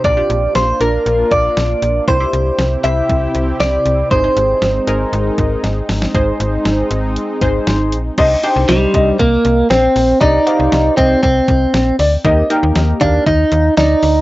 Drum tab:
CC |----------------|----------------|----------------|----------------|
HH |x-x-x-x-x-x-x-x-|x-x-x-x-x-x-x-x-|x-x-x-x-x-x-x-o-|x-x-x-x-x-x-x-x-|
SD |----o-------o---|----o-------o---|----o-------o-oo|----o-------o---|
BD |o---------o-----|o-------o-------|o---------o-----|o---------o-----|

CC |x---------------|----------------|----------------|
HH |x-x-x-x-x-x-x-o-|x-x-x-x-x-x-x-o-|x-x-x-x-x-x-x-o-|
SD |----o-------o---|----o-------o---|----o-------o---|
BD |o-----o-o-------|o-----o-o-o-----|o-----o-o-------|